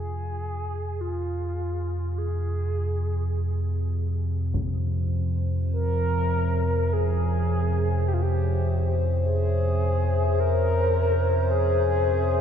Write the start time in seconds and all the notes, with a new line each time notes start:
Already playing: F2 C3 G#4
1.01 F4
2.18 G#4
4.53 C5, taiko
5.57 E5
5.72 A#4
5.78 C#5
6.93 G#4
8.08 G4
8.13 F4
8.22 G4
9.24 G#4
10.40 A#4
11.51 G#4